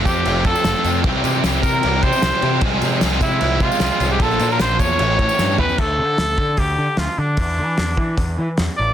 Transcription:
Already playing: distorted electric guitar F3, overdriven electric guitar C4 F4 A4
0.04 picked electric bass F2, distorted electric guitar A3 C4 F4, trumpet G4, synth bell G5, kick, tambourine, crash
0.16 tambourine
0.24 picked electric bass F1, distorted electric guitar F3 A3 C4 F4, overdriven electric guitar A4, tambourine, crash
0.44 picked electric bass F2, distorted electric guitar A3 C4 F4, overdriven electric guitar A4, trumpet A4, synth bell A5, kick, tambourine, crash
0.48 overdriven electric guitar F4
0.56 tambourine
0.64 picked electric bass F1, distorted electric guitar F3 A3 C4 F4, snare, tambourine, crash
0.68 overdriven electric guitar A4
0.83 picked electric bass F2, distorted electric guitar A3 C4 F4, overdriven electric guitar A4, tambourine, crash
0.88 overdriven electric guitar F4
1.03 picked electric bass C2, distorted electric guitar E3 C4 E4 G4, overdriven electric guitar G3, kick, crash
1.22 picked electric bass C3, distorted electric guitar C4 E4 G4, tambourine, crash
1.35 tambourine
1.42 picked electric bass C2, distorted electric guitar E3 C4 E4 G4, overdriven electric guitar G3, snare, tambourine, crash
1.62 picked electric bass C3, distorted electric guitar C4 E4 G4, trumpet A#4, synth bell A#5, kick, tambourine, crash
1.82 picked electric bass C2, distorted electric guitar E3 C4 E4 G4, overdriven electric guitar G3, tambourine, crash
2.02 picked electric bass C3, distorted electric guitar C4 E4 G4, trumpet C5, synth bell C6, kick, tambourine, crash
2.13 tambourine
2.22 picked electric bass C2, distorted electric guitar E3 C4 E4 G4, overdriven electric guitar G3, snare, tambourine, crash
2.41 picked electric bass C3, distorted electric guitar C4 E4 G4, crash
2.61 picked electric bass C2, distorted electric guitar F3 G#3 C4 G#4, kick, crash
2.81 picked electric bass C3, distorted electric guitar G#3 C4 G#4, tambourine, crash
3.00 picked electric bass C2, distorted electric guitar F3 G#3 C4 G#4, snare, tambourine, crash
3.21 picked electric bass C3, distorted electric guitar G#3 C4 G#4, trumpet E4, synth bell E5, kick, tambourine, crash
3.32 tambourine
3.40 picked electric bass C2, distorted electric guitar F3 G#3 C4 G#4, tambourine, crash
3.60 picked electric bass C3, distorted electric guitar G#3 C4 G#4, trumpet F4, synth bell F5, kick, tambourine, crash
3.72 tambourine
3.79 picked electric bass C2, distorted electric guitar F3 G#3 C4 G#4, snare, tambourine, crash
3.99 picked electric bass C2, distorted electric guitar G#3 C4 G#4, tambourine, crash
4.11 trumpet G4, synth bell G5
4.18 picked electric bass A#1, distorted electric guitar F3 A#3 D4 F4, trumpet A4, synth bell A5, kick, tambourine, crash
4.31 tambourine
4.39 picked electric bass A#2, distorted electric guitar A#3 D4 F4, tambourine, crash
4.51 trumpet A#4, synth bell A#5, tambourine
4.59 picked electric bass A#1, distorted electric guitar F3 A#3 D4 F4, trumpet C5, synth bell C6, snare, tambourine, crash
4.71 tambourine
4.79 picked electric bass E2, distorted electric guitar A#3 D4 F4, trumpet C#5, synth bell C#6, kick, tambourine, crash
4.98 picked electric bass A1, distorted electric guitar E3 A3 C#4, tambourine, crash
5.03 overdriven electric guitar G4
5.18 picked electric bass A2, distorted electric guitar A3 C#4, overdriven electric guitar G4, kick, crash
5.22 overdriven electric guitar C#4
5.29 tambourine
5.37 picked electric bass G2, distorted electric guitar E3 A3 C#4, snare, tambourine
5.43 overdriven electric guitar G4
5.49 tambourine
5.57 picked electric bass E2, distorted electric guitar A3 C#4, overdriven electric guitar G4, trumpet B4, floor tom
5.69 tambourine
5.78 picked electric bass D2, trumpet A4, kick, crash
5.99 picked electric bass D3
6.18 picked electric bass D2, snare, open hi-hat
6.38 picked electric bass D3, kick
6.57 picked electric bass D2, trumpet G4, kick, open hi-hat
6.78 picked electric bass D3
6.97 picked electric bass D2, trumpet F4, snare, open hi-hat
7.18 picked electric bass D3, trumpet D4
7.37 picked electric bass E2, kick, open hi-hat
7.59 picked electric bass E3
7.77 picked electric bass E2, snare, open hi-hat
7.97 picked electric bass E3, kick
8.18 picked electric bass E2, kick, open hi-hat
8.38 picked electric bass E3
8.57 picked electric bass E2, snare, open hi-hat
8.77 picked electric bass A1, trumpet D5

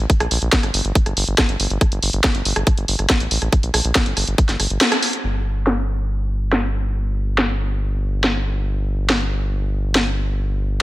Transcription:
0.10 kick, closed hi-hat
0.20 analog synth bass A#1, cross-stick, closed hi-hat
0.31 analog synth bass A#1, open hi-hat
0.42 analog synth bass A#1, closed hi-hat
0.53 kick, snare, closed hi-hat
0.63 analog synth bass G1, cross-stick, closed hi-hat
0.74 analog synth bass G1, open hi-hat
0.85 analog synth bass G1, closed hi-hat
0.95 kick, closed hi-hat
1.06 analog synth bass G1, cross-stick, closed hi-hat
1.17 analog synth bass G1, open hi-hat
1.28 analog synth bass G1, closed hi-hat
1.38 kick, cross-stick, snare, closed hi-hat
1.49 analog synth bass G1, closed hi-hat
1.60 analog synth bass G1, open hi-hat
1.70 analog synth bass G1, closed hi-hat
1.81 kick, cross-stick, closed hi-hat
1.92 analog synth bass G1, closed hi-hat
2.03 analog synth bass G1, open hi-hat
2.13 analog synth bass G1, closed hi-hat
2.24 kick, cross-stick, snare, closed hi-hat
2.35 analog synth bass G1, closed hi-hat
2.45 analog synth bass G1, open hi-hat
2.56 analog synth bass G1, cross-stick, closed hi-hat
2.67 kick, closed hi-hat
2.78 analog synth bass G1, closed hi-hat
2.88 analog synth bass G1, open hi-hat
2.99 analog synth bass G1, cross-stick, closed hi-hat
3.10 kick, snare, closed hi-hat
3.20 analog synth bass A1, closed hi-hat
3.31 analog synth bass A1, open hi-hat
3.42 analog synth bass A1, cross-stick, closed hi-hat
3.53 kick, closed hi-hat
3.63 analog synth bass A#1, closed hi-hat
3.74 analog synth bass A#1, cross-stick, open hi-hat
3.85 analog synth bass A#1, closed hi-hat
3.95 kick, snare, closed hi-hat
4.06 analog synth bass G1, closed hi-hat
4.17 analog synth bass G1, cross-stick, open hi-hat
4.28 analog synth bass G1, closed hi-hat
4.38 kick, closed hi-hat
4.49 analog synth bass G1, snare, closed hi-hat
4.60 analog synth bass G1, cross-stick, open hi-hat
4.70 analog synth bass G1, closed hi-hat
4.81 snare, closed hi-hat
4.92 cross-stick, closed hi-hat
5.02 open hi-hat
5.13 closed hi-hat
5.24 analog synth bass G1
5.67 snare
6.53 snare
7.38 snare
8.24 snare
9.10 snare
9.95 snare

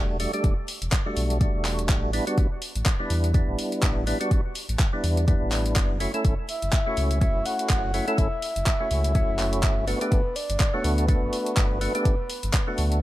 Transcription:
Already playing: sub bass E1, tonewheel organ G3 A3 D4 F#4
0.20 tonewheel organ G3 A3 D4 F#4, open hi-hat
0.33 tonewheel organ G3 A3 D4 G4, closed hi-hat
0.44 sub bass E1, kick, closed hi-hat
0.68 open hi-hat
0.82 sub bass E1, closed hi-hat
0.92 kick, clap, closed hi-hat
1.06 tonewheel organ G3 A3 D4 F#4
1.17 sub bass B1, open hi-hat
1.30 closed hi-hat
1.40 tonewheel organ G3 A3 D4 F#4, kick, closed hi-hat
1.54 sub bass E1
1.65 clap, open hi-hat
1.79 closed hi-hat
1.89 sub bass A1, kick, clap, closed hi-hat
2.13 tonewheel organ G3 B3 D4 E4, open hi-hat
2.27 tonewheel organ G3 B3 D4 F#4, closed hi-hat
2.38 sub bass A1, kick, closed hi-hat
2.62 open hi-hat
2.76 sub bass A1, closed hi-hat
2.86 kick, clap, closed hi-hat
2.99 tonewheel organ G3 B3 D4 E4
3.10 sub bass E2, open hi-hat
3.24 closed hi-hat
3.34 tonewheel organ G3 B3 D4 E4, kick, closed hi-hat
3.48 sub bass A1
3.59 open hi-hat
3.72 closed hi-hat
3.83 sub bass A1, kick, clap, closed hi-hat
4.07 tonewheel organ G3 B3 D4 E4, open hi-hat
4.20 tonewheel organ G3 B3 D4 F#4, closed hi-hat
4.31 sub bass A1, kick, closed hi-hat
4.55 open hi-hat
4.69 sub bass A1, closed hi-hat
4.79 kick, clap, closed hi-hat
4.93 tonewheel organ G3 B3 D4 E4
5.04 sub bass E2, open hi-hat
5.17 closed hi-hat
5.27 tonewheel organ G3 B3 D4 E4, kick, closed hi-hat
5.42 sub bass A1
5.52 clap, open hi-hat
5.66 closed hi-hat
5.76 sub bass F#1, kick, clap, closed hi-hat
6.00 tonewheel organ A3 C#4 E4 F#4, open hi-hat
6.14 tonewheel organ A3 C#4 E4 A4, closed hi-hat
6.25 sub bass F#1, kick, closed hi-hat
6.49 soft synth lead E5, open hi-hat
6.62 sub bass F#1, closed hi-hat
6.73 kick, clap, closed hi-hat
6.86 tonewheel organ A3 C#4 E4 F#4
6.97 sub bass C#2, open hi-hat
7.11 closed hi-hat
7.21 tonewheel organ A3 C#4 E4 F#4, soft synth lead E5, kick, closed hi-hat
7.35 sub bass F#1
7.46 soft synth lead F#5, open hi-hat
7.59 closed hi-hat
7.70 sub bass F#1, kick, clap, closed hi-hat
7.94 tonewheel organ A3 C#4 E4 F#4, open hi-hat
8.07 tonewheel organ A3 C#4 E4 A4, closed hi-hat
8.18 sub bass F#1, soft synth lead E5, kick, closed hi-hat
8.42 open hi-hat
8.56 sub bass F#1, closed hi-hat
8.66 kick, clap, closed hi-hat
8.80 tonewheel organ A3 C#4 E4 F#4
8.91 sub bass C#2, open hi-hat
9.04 closed hi-hat
9.14 tonewheel organ A3 C#4 E4 F#4, kick, closed hi-hat
9.29 sub bass F#1
9.39 clap, open hi-hat
9.53 closed hi-hat
9.63 sub bass G1, kick, clap, closed hi-hat
9.87 tonewheel organ A3 B3 D4 F#4, soft synth lead B4, open hi-hat
10.01 tonewheel organ A3 B3 D4 G4, closed hi-hat
10.12 sub bass G1, kick, closed hi-hat
10.36 soft synth lead D5, open hi-hat
10.50 sub bass G1, closed hi-hat
10.60 kick, clap, closed hi-hat
10.74 tonewheel organ A3 B3 D4 F#4, soft synth lead C#5
10.84 sub bass D2, soft synth lead B4, open hi-hat
10.98 closed hi-hat
11.08 tonewheel organ A3 B3 D4 F#4, kick, closed hi-hat
11.22 sub bass G1
11.33 open hi-hat
11.46 closed hi-hat
11.57 sub bass G1, kick, clap, closed hi-hat
11.81 tonewheel organ A3 B3 D4 F#4, open hi-hat
11.95 tonewheel organ A3 B3 D4 G4, closed hi-hat
12.05 sub bass G1, kick, closed hi-hat
12.30 open hi-hat
12.43 sub bass G1, closed hi-hat
12.54 kick, clap, closed hi-hat
12.67 tonewheel organ A3 B3 D4 F#4
12.78 sub bass D2, open hi-hat
12.92 closed hi-hat

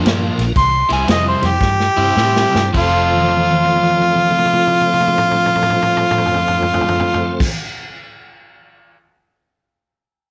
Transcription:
Already playing: tonewheel organ F3 A#3 D4 F4 A#4
0.05 fingered electric bass G2, overdriven electric guitar A#2 F3 A#3 D4, snare, ride
0.38 fingered electric bass A#1, snare, ride
0.56 fingered electric bass C2, harmonica C6, kick, snare, ride
0.89 fingered electric bass C2, overdriven electric guitar C3 G3 C4 E4, harmonica G#5, snare, ride
1.06 fingered electric bass F2, overdriven electric guitar C3 G3 C4 E4, harmonica D#5, snare, ride
1.28 harmonica C5
1.41 fingered electric bass F2, tonewheel organ G3 C4 E4 G4 C5, snare, ride
1.46 harmonica G4
1.61 fingered electric bass G2, kick, snare
1.80 snare
1.97 fingered electric bass G2, overdriven electric guitar C3 G3 C4 E4, tonewheel organ G3 C4 E4 G4 C5
2.16 fingered electric bass A2, overdriven electric guitar C3 G3 C4 E4, snare
2.36 snare
2.55 fingered electric bass G2, snare
2.69 tonewheel organ A3 C4
2.73 fingered electric bass F1, overdriven electric guitar F3 C4 F4, tonewheel organ F4, kick, crash
2.77 harmonica F4, overdriven electric guitar A4, tonewheel organ A4
2.81 tonewheel organ C5
3.13 high tom
3.21 high tom
3.28 high tom
3.37 high tom
3.51 high tom
3.65 high tom
3.76 high tom
3.83 high tom
3.90 high tom
4.02 high tom
4.16 mid tom
4.30 mid tom
4.38 mid tom
4.45 mid tom
4.53 mid tom
4.67 mid tom
4.81 mid tom
4.93 mid tom
5.00 mid tom
5.08 mid tom
5.18 mid tom
5.31 mid tom
5.46 mid tom
5.55 mid tom
5.62 mid tom
5.70 mid tom
5.82 mid tom
5.97 mid tom
6.11 mid tom
6.18 mid tom
6.26 floor tom
6.34 floor tom
6.48 floor tom
6.62 floor tom
6.74 floor tom
6.81 floor tom
6.88 floor tom
7.00 floor tom
7.14 floor tom
7.40 kick, crash

